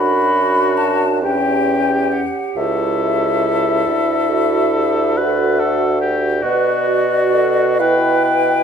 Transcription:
Already playing: bassoon F#2, french horn D4, oboe F#4, clarinet F#4, flute B5
0.77 flute A5
1.22 bassoon E2, french horn C#4, clarinet G4, oboe G4, flute G5
2.12 flute F#5
2.55 bassoon C#2, french horn E4, oboe A4, flute E5
3.86 bassoon D2, clarinet A4
4.30 clarinet F#4
4.75 clarinet G4
5.17 french horn F#4, clarinet A4, oboe B4
5.59 oboe A4
6.01 oboe G4
6.41 bassoon B2, french horn F#4, oboe F#4, clarinet B4, flute D5
6.87 clarinet F#4
7.34 clarinet A4
7.80 french horn E4, oboe B4, clarinet B4, flute G5
8.25 oboe B4

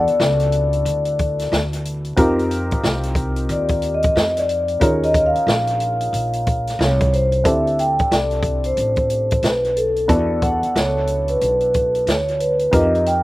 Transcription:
Already playing: upright piano B3 D4 E4 F#4 A4
0.00 vibraphone D5
0.07 muted upright bass stroke, closed hi-hat
0.20 upright bass C#2, snare
0.40 closed hi-hat
0.52 closed hi-hat
0.73 closed hi-hat
0.85 upright bass D2, closed hi-hat
1.05 closed hi-hat
1.19 kick, closed hi-hat
1.39 snare, closed hi-hat
1.52 upright bass D2, snare
1.73 closed hi-hat
1.85 closed hi-hat
2.05 closed hi-hat
2.17 upright bass F2, upright piano C4 D#4 F4 G4 A#4, kick, closed hi-hat
2.39 closed hi-hat
2.51 closed hi-hat
2.71 muted upright bass stroke, kick, closed hi-hat
2.83 upright bass C2, snare
3.03 closed hi-hat
3.15 kick, closed hi-hat
3.36 closed hi-hat
3.49 upright bass D#2, vibraphone D5, closed hi-hat
3.68 kick, closed hi-hat
3.82 closed hi-hat
3.94 vibraphone D#5
4.03 kick, closed hi-hat
4.16 upright bass F2, snare
4.37 vibraphone D5, closed hi-hat
4.49 closed hi-hat
4.68 closed hi-hat
4.80 upright bass D#2, upright piano C#4 D#4 F4 G#4 A#4, vibraphone C#5, kick, closed hi-hat
5.03 vibraphone D#5, closed hi-hat
5.14 kick, closed hi-hat
5.26 vibraphone F5
5.35 muted upright bass stroke, closed hi-hat
5.47 upright bass A#1, snare
5.67 closed hi-hat
5.80 closed hi-hat
6.01 closed hi-hat
6.13 upright bass A#1, closed hi-hat
6.33 closed hi-hat
6.46 kick, closed hi-hat
6.67 snare, closed hi-hat
6.79 upright bass C2, vibraphone C#5, snare
7.00 kick, closed hi-hat
7.13 vibraphone C5, closed hi-hat
7.32 closed hi-hat
7.44 upright bass D2, upright piano C4 D4 E4 G4 A4, vibraphone E5, kick, closed hi-hat
7.67 closed hi-hat
7.79 vibraphone G5, closed hi-hat
7.99 muted upright bass stroke, kick, closed hi-hat
8.11 upright bass C2, vibraphone D5, snare, closed hi-hat
8.31 closed hi-hat
8.43 kick, closed hi-hat
8.64 vibraphone C5, closed hi-hat
8.77 upright bass A1, closed hi-hat
8.96 kick, closed hi-hat
9.10 closed hi-hat
9.31 kick, closed hi-hat
9.43 upright bass B1, vibraphone B4, snare, closed hi-hat
9.64 closed hi-hat
9.76 vibraphone A4, closed hi-hat
9.96 closed hi-hat
10.08 upright bass E2, upright piano B3 D4 E4 F#4 A4, vibraphone D5, kick, closed hi-hat
10.42 vibraphone F#5, kick, closed hi-hat
10.63 muted upright bass stroke, closed hi-hat
10.75 upright bass C#2, vibraphone C#5, snare, closed hi-hat
11.07 closed hi-hat
11.28 vibraphone B4, closed hi-hat
11.41 upright bass B1, closed hi-hat
11.60 closed hi-hat
11.74 kick, closed hi-hat
11.95 closed hi-hat
12.07 upright bass D2, vibraphone C#5, snare, closed hi-hat
12.28 closed hi-hat
12.36 vibraphone C#5
12.40 vibraphone B4, closed hi-hat
12.59 closed hi-hat
12.71 upright bass F2, upright piano C4 D#4 F4 G4 A#4, vibraphone D#5, kick, closed hi-hat
12.95 closed hi-hat
13.06 vibraphone G5, closed hi-hat

